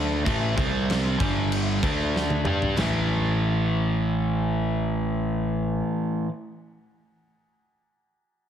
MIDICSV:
0, 0, Header, 1, 4, 480
1, 0, Start_track
1, 0, Key_signature, 0, "minor"
1, 0, Tempo, 625000
1, 199, Time_signature, 4, 2, 24, 8
1, 6520, End_track
2, 0, Start_track
2, 0, Title_t, "Overdriven electric guitar"
2, 0, Program_c, 0, 29
2, 0, Note_on_c, 0, 50, 91
2, 0, Note_on_c, 0, 57, 94
2, 0, Note_on_c, 0, 62, 96
2, 187, Note_off_c, 0, 50, 0
2, 190, Note_off_c, 0, 57, 0
2, 190, Note_on_c, 0, 45, 94
2, 194, Note_off_c, 0, 62, 0
2, 196, Note_on_c, 0, 52, 101
2, 198, Note_on_c, 0, 57, 102
2, 428, Note_off_c, 0, 45, 0
2, 431, Note_off_c, 0, 52, 0
2, 432, Note_off_c, 0, 57, 0
2, 434, Note_on_c, 0, 48, 85
2, 436, Note_on_c, 0, 55, 93
2, 440, Note_on_c, 0, 60, 91
2, 911, Note_off_c, 0, 48, 0
2, 911, Note_off_c, 0, 55, 0
2, 911, Note_on_c, 0, 43, 95
2, 914, Note_off_c, 0, 60, 0
2, 915, Note_on_c, 0, 50, 96
2, 922, Note_on_c, 0, 55, 108
2, 1389, Note_off_c, 0, 43, 0
2, 1391, Note_off_c, 0, 50, 0
2, 1394, Note_off_c, 0, 55, 0
2, 1406, Note_on_c, 0, 50, 92
2, 1409, Note_on_c, 0, 57, 90
2, 1411, Note_on_c, 0, 62, 105
2, 1876, Note_off_c, 0, 50, 0
2, 1878, Note_off_c, 0, 57, 0
2, 1879, Note_off_c, 0, 62, 0
2, 1889, Note_on_c, 0, 55, 86
2, 1894, Note_on_c, 0, 62, 90
2, 1896, Note_on_c, 0, 67, 100
2, 2118, Note_off_c, 0, 55, 0
2, 2121, Note_off_c, 0, 62, 0
2, 2122, Note_off_c, 0, 67, 0
2, 2123, Note_on_c, 0, 45, 96
2, 2136, Note_on_c, 0, 52, 108
2, 2152, Note_on_c, 0, 57, 108
2, 4811, Note_off_c, 0, 45, 0
2, 4824, Note_off_c, 0, 52, 0
2, 4840, Note_off_c, 0, 57, 0
2, 6520, End_track
3, 0, Start_track
3, 0, Title_t, "Picked electric bass"
3, 0, Program_c, 1, 34
3, 0, Note_on_c, 1, 38, 91
3, 177, Note_off_c, 1, 38, 0
3, 205, Note_on_c, 1, 33, 97
3, 426, Note_off_c, 1, 33, 0
3, 439, Note_on_c, 1, 36, 92
3, 889, Note_off_c, 1, 36, 0
3, 923, Note_on_c, 1, 31, 91
3, 1371, Note_off_c, 1, 31, 0
3, 1404, Note_on_c, 1, 38, 97
3, 1852, Note_off_c, 1, 38, 0
3, 1878, Note_on_c, 1, 43, 98
3, 2103, Note_off_c, 1, 43, 0
3, 2119, Note_on_c, 1, 33, 87
3, 4463, Note_off_c, 1, 33, 0
3, 6520, End_track
4, 0, Start_track
4, 0, Title_t, "Drums"
4, 203, Note_on_c, 9, 36, 111
4, 210, Note_on_c, 9, 49, 74
4, 280, Note_off_c, 9, 36, 0
4, 286, Note_off_c, 9, 49, 0
4, 442, Note_on_c, 9, 36, 113
4, 451, Note_on_c, 9, 49, 64
4, 519, Note_off_c, 9, 36, 0
4, 528, Note_off_c, 9, 49, 0
4, 689, Note_on_c, 9, 49, 78
4, 698, Note_on_c, 9, 38, 121
4, 766, Note_off_c, 9, 49, 0
4, 775, Note_off_c, 9, 38, 0
4, 923, Note_on_c, 9, 36, 118
4, 928, Note_on_c, 9, 49, 68
4, 1000, Note_off_c, 9, 36, 0
4, 1005, Note_off_c, 9, 49, 0
4, 1166, Note_on_c, 9, 49, 91
4, 1243, Note_off_c, 9, 49, 0
4, 1405, Note_on_c, 9, 36, 106
4, 1410, Note_on_c, 9, 49, 66
4, 1482, Note_off_c, 9, 36, 0
4, 1487, Note_off_c, 9, 49, 0
4, 1660, Note_on_c, 9, 38, 66
4, 1737, Note_off_c, 9, 38, 0
4, 1769, Note_on_c, 9, 48, 71
4, 1846, Note_off_c, 9, 48, 0
4, 1883, Note_on_c, 9, 45, 101
4, 1960, Note_off_c, 9, 45, 0
4, 2013, Note_on_c, 9, 43, 91
4, 2090, Note_off_c, 9, 43, 0
4, 2129, Note_on_c, 9, 49, 78
4, 2138, Note_on_c, 9, 38, 94
4, 2206, Note_off_c, 9, 49, 0
4, 2215, Note_off_c, 9, 38, 0
4, 6520, End_track
0, 0, End_of_file